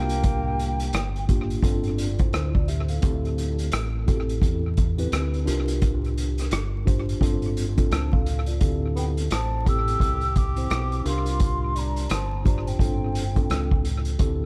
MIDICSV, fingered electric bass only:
0, 0, Header, 1, 2, 480
1, 0, Start_track
1, 0, Tempo, 697674
1, 164, Time_signature, 4, 2, 24, 8
1, 9945, End_track
2, 0, Start_track
2, 0, Title_t, "Fingered electric bass"
2, 0, Program_c, 0, 33
2, 0, Note_on_c, 0, 36, 97
2, 616, Note_off_c, 0, 36, 0
2, 640, Note_on_c, 0, 31, 86
2, 1098, Note_off_c, 0, 31, 0
2, 1119, Note_on_c, 0, 31, 101
2, 1577, Note_off_c, 0, 31, 0
2, 1605, Note_on_c, 0, 38, 92
2, 2060, Note_off_c, 0, 38, 0
2, 2084, Note_on_c, 0, 38, 93
2, 2540, Note_off_c, 0, 38, 0
2, 2559, Note_on_c, 0, 33, 90
2, 3017, Note_off_c, 0, 33, 0
2, 3036, Note_on_c, 0, 40, 93
2, 3496, Note_off_c, 0, 40, 0
2, 3522, Note_on_c, 0, 38, 77
2, 3751, Note_off_c, 0, 38, 0
2, 3765, Note_on_c, 0, 36, 87
2, 4457, Note_off_c, 0, 36, 0
2, 4482, Note_on_c, 0, 31, 83
2, 4939, Note_off_c, 0, 31, 0
2, 4960, Note_on_c, 0, 31, 94
2, 5418, Note_off_c, 0, 31, 0
2, 5440, Note_on_c, 0, 37, 84
2, 5898, Note_off_c, 0, 37, 0
2, 5925, Note_on_c, 0, 38, 99
2, 6381, Note_off_c, 0, 38, 0
2, 6399, Note_on_c, 0, 33, 76
2, 6857, Note_off_c, 0, 33, 0
2, 6879, Note_on_c, 0, 36, 89
2, 7337, Note_off_c, 0, 36, 0
2, 7364, Note_on_c, 0, 35, 95
2, 7592, Note_off_c, 0, 35, 0
2, 7604, Note_on_c, 0, 36, 104
2, 8296, Note_off_c, 0, 36, 0
2, 8324, Note_on_c, 0, 31, 78
2, 8780, Note_off_c, 0, 31, 0
2, 8799, Note_on_c, 0, 31, 101
2, 9257, Note_off_c, 0, 31, 0
2, 9286, Note_on_c, 0, 37, 92
2, 9741, Note_off_c, 0, 37, 0
2, 9766, Note_on_c, 0, 38, 95
2, 9945, Note_off_c, 0, 38, 0
2, 9945, End_track
0, 0, End_of_file